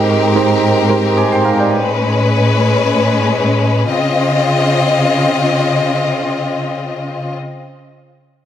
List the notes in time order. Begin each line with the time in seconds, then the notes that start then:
Already playing: G#2 G#3 C4 D#4 G4 A#4 C5 D#5
0.35 G#3 D#4 G4 A#4 C5
0.89 G#3 D#4 G4 A#4 C5
1.17 G#5 D6
1.32 G5 C6
1.44 F5 A#5
1.59 D5 G5
1.71 A2 G#3 C#4 B4
3.90 C#3 C4 F4 D#5